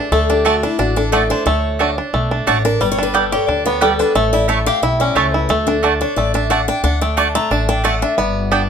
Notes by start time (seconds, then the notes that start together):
Already playing: A3 D4 G#4
0.12 D2 A3 A4
0.30 D4 G4
0.45 A3 F#4 D5 A5
0.63 D4 E4
0.79 A1 D4 F#4
0.96 D4 A4
1.12 A3 F#4 D5 A5
1.30 D4 C5
1.46 D2 A3 C#5
1.79 A3 D4 F#4 D5 A5
1.98 D4
2.13 B1 A3
2.31 D4
2.47 A1 A3 D4 F#4 C#5 D5 A5
2.65 D4 A#4
2.80 G1 G3 B4
2.92 C#5
2.98 D4
3.03 B4
3.14 G3 B3 G4 A4 D5 G5
3.32 G4 C#5
3.48 D2 D4 D5
3.66 B3 C#5
3.81 G3 B3 G4 A4 D5 G5
3.99 D4 B4
4.15 A1 A3 C#5
4.33 E4 D5
4.48 A3 E4 C#5 E5 A5
4.66 G4 F5
4.82 B1 E4 E5
5.00 C#4 D5
5.15 C#2 A3 E4 C#5 A5
5.33 E4 B4
5.49 D2 A3 A4
5.67 D4
5.83 A3 D4 F#4 D5 A5
6.01 D4 C#5
6.16 A1 A3 D5
6.34 D4 E5
6.50 A3 D4 F#4 D5 F#5 A5
6.68 D4 G5
6.83 D2 D4 F#5
7.01 A3 G5
7.17 A3 D4 F#4 D5 A5
7.35 A3 A#5
7.50 A1 D4 A5
7.69 D4 G5
7.84 A3 F#4 D5 F#5 A5
8.02 D4 E5
8.18 G1 B3 D5
8.51 B3 D4 G4 D5 G5